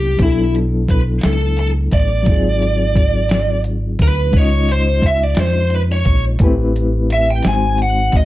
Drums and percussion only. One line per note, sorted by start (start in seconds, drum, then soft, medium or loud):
0.19 kick loud
0.19 closed hi-hat medium
0.55 closed hi-hat soft
0.89 kick medium
0.89 closed hi-hat medium
1.21 snare medium
1.21 closed hi-hat medium
1.57 closed hi-hat soft
1.91 kick medium
1.91 closed hi-hat medium
2.26 kick loud
2.26 closed hi-hat medium
2.62 closed hi-hat soft
2.96 kick medium
2.96 closed hi-hat medium
3.29 snare medium
3.29 closed hi-hat medium
3.64 closed hi-hat soft
3.99 kick medium
3.99 closed hi-hat medium
4.33 kick loud
4.33 closed hi-hat medium
4.69 closed hi-hat soft
5.02 kick medium
5.02 closed hi-hat medium
5.35 snare loud
5.35 closed hi-hat medium
5.70 closed hi-hat soft
6.05 kick medium
6.05 closed hi-hat medium
6.39 kick loud
6.39 closed hi-hat medium
6.76 closed hi-hat soft
7.10 closed hi-hat medium
7.42 snare medium
7.42 closed hi-hat medium
7.78 closed hi-hat soft
8.12 kick medium
8.12 closed hi-hat medium